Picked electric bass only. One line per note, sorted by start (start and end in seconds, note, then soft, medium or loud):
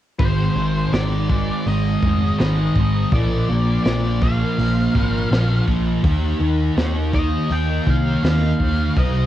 0.19 0.48 G#1 medium
0.55 0.84 G#1 medium
0.92 1.49 G#1 medium
1.66 1.94 G#1 medium
2.03 2.31 F1 medium
2.40 2.68 G#1 medium
2.76 3.04 G#1 medium
3.12 3.40 A#1 loud
3.49 3.77 A#1 medium
3.85 4.42 A#1 medium
4.58 4.87 A#1 loud
4.95 5.23 G#1 medium
5.31 5.60 A#1 medium
5.68 5.96 A#1 loud
6.04 6.33 D#2 loud
6.40 6.69 D#2 loud
6.77 7.34 D#2 medium
7.50 7.79 D#2 medium
7.87 8.15 C2 medium
8.23 8.52 D#2 medium
8.60 8.88 D#2 medium
8.96 9.25 C2 medium